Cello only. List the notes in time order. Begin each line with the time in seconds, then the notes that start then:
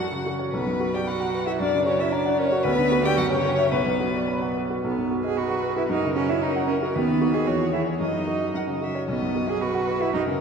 Already playing: F#4
0.53 B3
0.93 G4
1.07 F#4
1.47 E4
1.60 D4
1.87 C#4
1.99 E4
2.12 D4
2.39 C#4
2.64 B3
3.03 G4
3.17 F#4
3.30 C#4
3.72 B3
4.84 B3
5.25 G#4
5.37 F#4
5.77 E4
5.90 D#4
6.16 C#4
6.29 E4
6.42 D#4
6.67 C#4
6.95 B3
7.34 G#4
7.47 F#4
7.73 E4
8.01 D#4
9.09 B3
9.49 G#4
9.62 F#4
10.02 E4
10.14 D#4